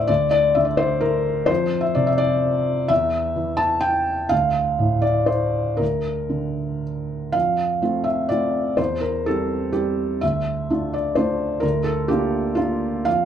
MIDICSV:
0, 0, Header, 1, 2, 480
1, 0, Start_track
1, 0, Key_signature, -1, "major"
1, 0, Tempo, 470219
1, 87, Time_signature, 3, 2, 24, 8
1, 4405, Tempo, 504626
1, 7285, Tempo, 476569
1, 13235, End_track
2, 0, Start_track
2, 0, Title_t, "Felt piano"
2, 0, Program_c, 0, 0
2, 0, Control_c, 0, 64, 127
2, 0, Note_on_c, 0, 38, 56
2, 0, Note_on_c, 0, 45, 46
2, 0, Note_on_c, 0, 69, 72
2, 0, Note_on_c, 0, 72, 76
2, 0, Note_on_c, 0, 74, 87
2, 0, Note_on_c, 0, 76, 65
2, 76, Note_off_c, 0, 74, 0
2, 76, Note_on_c, 0, 74, 84
2, 87, Note_off_c, 0, 38, 0
2, 87, Note_on_c, 0, 38, 60
2, 106, Control_c, 0, 64, 0
2, 112, Note_off_c, 0, 45, 0
2, 115, Note_off_c, 0, 72, 0
2, 116, Note_off_c, 0, 76, 0
2, 117, Note_off_c, 0, 69, 0
2, 279, Control_c, 0, 64, 127
2, 299, Note_off_c, 0, 74, 0
2, 314, Note_on_c, 0, 74, 91
2, 559, Note_on_c, 0, 76, 76
2, 560, Note_off_c, 0, 74, 0
2, 575, Note_on_c, 0, 50, 51
2, 661, Note_on_c, 0, 74, 62
2, 683, Note_off_c, 0, 76, 0
2, 789, Note_on_c, 0, 72, 89
2, 794, Note_off_c, 0, 74, 0
2, 1027, Note_on_c, 0, 70, 81
2, 1037, Note_off_c, 0, 72, 0
2, 1480, Note_off_c, 0, 38, 0
2, 1492, Note_on_c, 0, 72, 90
2, 1510, Note_on_c, 0, 41, 66
2, 1511, Note_off_c, 0, 70, 0
2, 1525, Note_off_c, 0, 50, 0
2, 1540, Control_c, 0, 64, 0
2, 1672, Control_c, 0, 64, 127
2, 1844, Note_on_c, 0, 76, 73
2, 1864, Note_off_c, 0, 72, 0
2, 1981, Note_off_c, 0, 76, 0
2, 1987, Note_on_c, 0, 74, 80
2, 1996, Note_on_c, 0, 48, 54
2, 2112, Note_off_c, 0, 74, 0
2, 2112, Note_on_c, 0, 76, 72
2, 2222, Note_on_c, 0, 74, 93
2, 2234, Note_off_c, 0, 76, 0
2, 2913, Note_off_c, 0, 41, 0
2, 2944, Note_on_c, 0, 76, 93
2, 2952, Note_off_c, 0, 74, 0
2, 2955, Note_on_c, 0, 40, 61
2, 2958, Note_off_c, 0, 48, 0
2, 2980, Control_c, 0, 64, 0
2, 3144, Control_c, 0, 64, 127
2, 3429, Note_on_c, 0, 52, 47
2, 3643, Note_on_c, 0, 81, 88
2, 3665, Note_off_c, 0, 76, 0
2, 3885, Note_on_c, 0, 79, 85
2, 3900, Note_off_c, 0, 81, 0
2, 4361, Note_off_c, 0, 40, 0
2, 4381, Note_on_c, 0, 77, 91
2, 4390, Note_off_c, 0, 79, 0
2, 4400, Note_on_c, 0, 38, 60
2, 4402, Note_off_c, 0, 52, 0
2, 4420, Control_c, 0, 64, 0
2, 4565, Control_c, 0, 64, 127
2, 4856, Note_on_c, 0, 45, 47
2, 5072, Note_on_c, 0, 74, 78
2, 5094, Note_off_c, 0, 77, 0
2, 5307, Note_on_c, 0, 72, 78
2, 5326, Note_off_c, 0, 74, 0
2, 5785, Note_off_c, 0, 38, 0
2, 5787, Note_on_c, 0, 70, 64
2, 5807, Note_off_c, 0, 72, 0
2, 5809, Note_on_c, 0, 38, 45
2, 5819, Note_off_c, 0, 45, 0
2, 5844, Control_c, 0, 64, 0
2, 6001, Control_c, 0, 64, 127
2, 6289, Note_on_c, 0, 50, 39
2, 6783, Note_off_c, 0, 70, 0
2, 7240, Note_off_c, 0, 38, 0
2, 7267, Note_on_c, 0, 77, 84
2, 7274, Note_off_c, 0, 50, 0
2, 7279, Note_on_c, 0, 41, 50
2, 7303, Control_c, 0, 64, 0
2, 7491, Control_c, 0, 64, 127
2, 7752, Note_off_c, 0, 41, 0
2, 7765, Note_on_c, 0, 57, 43
2, 7770, Note_on_c, 0, 60, 40
2, 7771, Note_on_c, 0, 65, 43
2, 7985, Note_on_c, 0, 76, 69
2, 8003, Note_off_c, 0, 77, 0
2, 8213, Note_off_c, 0, 57, 0
2, 8215, Note_off_c, 0, 60, 0
2, 8216, Note_off_c, 0, 65, 0
2, 8235, Note_on_c, 0, 74, 78
2, 8242, Note_off_c, 0, 76, 0
2, 8252, Note_on_c, 0, 57, 36
2, 8260, Note_on_c, 0, 65, 43
2, 8261, Note_on_c, 0, 60, 39
2, 8695, Note_off_c, 0, 57, 0
2, 8699, Note_off_c, 0, 60, 0
2, 8699, Note_off_c, 0, 65, 0
2, 8722, Note_on_c, 0, 72, 71
2, 8727, Note_off_c, 0, 74, 0
2, 8734, Note_on_c, 0, 40, 49
2, 8753, Control_c, 0, 64, 0
2, 8889, Control_c, 0, 64, 127
2, 8959, Note_on_c, 0, 70, 71
2, 8969, Note_off_c, 0, 72, 0
2, 9201, Note_off_c, 0, 40, 0
2, 9208, Note_off_c, 0, 70, 0
2, 9219, Note_on_c, 0, 69, 76
2, 9229, Note_on_c, 0, 55, 41
2, 9233, Note_on_c, 0, 60, 39
2, 9234, Note_on_c, 0, 67, 45
2, 9656, Note_off_c, 0, 55, 0
2, 9659, Note_off_c, 0, 60, 0
2, 9659, Note_off_c, 0, 67, 0
2, 9684, Note_on_c, 0, 67, 67
2, 9691, Note_off_c, 0, 69, 0
2, 9693, Note_on_c, 0, 55, 38
2, 9697, Note_on_c, 0, 60, 41
2, 10142, Note_off_c, 0, 55, 0
2, 10144, Note_off_c, 0, 60, 0
2, 10176, Note_on_c, 0, 76, 84
2, 10178, Note_off_c, 0, 67, 0
2, 10191, Note_on_c, 0, 38, 49
2, 10202, Control_c, 0, 64, 0
2, 10358, Control_c, 0, 64, 127
2, 10653, Note_off_c, 0, 38, 0
2, 10668, Note_on_c, 0, 57, 40
2, 10668, Note_on_c, 0, 62, 43
2, 10676, Note_on_c, 0, 65, 45
2, 10895, Note_off_c, 0, 76, 0
2, 10902, Note_on_c, 0, 74, 64
2, 11096, Note_off_c, 0, 57, 0
2, 11096, Note_off_c, 0, 62, 0
2, 11100, Note_off_c, 0, 65, 0
2, 11124, Note_on_c, 0, 72, 76
2, 11136, Note_off_c, 0, 74, 0
2, 11141, Note_on_c, 0, 62, 45
2, 11142, Note_on_c, 0, 57, 37
2, 11147, Note_on_c, 0, 65, 44
2, 11568, Note_off_c, 0, 62, 0
2, 11569, Note_off_c, 0, 57, 0
2, 11571, Note_off_c, 0, 65, 0
2, 11574, Note_on_c, 0, 70, 77
2, 11596, Note_on_c, 0, 38, 57
2, 11600, Note_off_c, 0, 72, 0
2, 11621, Control_c, 0, 64, 0
2, 11781, Control_c, 0, 64, 127
2, 11815, Note_on_c, 0, 69, 76
2, 11825, Note_off_c, 0, 70, 0
2, 12057, Note_off_c, 0, 38, 0
2, 12058, Note_on_c, 0, 67, 80
2, 12063, Note_off_c, 0, 69, 0
2, 12075, Note_on_c, 0, 58, 43
2, 12083, Note_on_c, 0, 62, 44
2, 12084, Note_on_c, 0, 65, 46
2, 12508, Note_off_c, 0, 58, 0
2, 12512, Note_off_c, 0, 62, 0
2, 12512, Note_off_c, 0, 65, 0
2, 12529, Note_on_c, 0, 65, 78
2, 12540, Note_off_c, 0, 67, 0
2, 12547, Note_on_c, 0, 58, 41
2, 12550, Note_on_c, 0, 62, 38
2, 13002, Note_off_c, 0, 58, 0
2, 13003, Note_off_c, 0, 62, 0
2, 13033, Note_off_c, 0, 65, 0
2, 13034, Note_on_c, 0, 77, 92
2, 13045, Note_on_c, 0, 41, 56
2, 13061, Control_c, 0, 64, 0
2, 13235, Note_off_c, 0, 41, 0
2, 13235, Note_off_c, 0, 77, 0
2, 13235, End_track
0, 0, End_of_file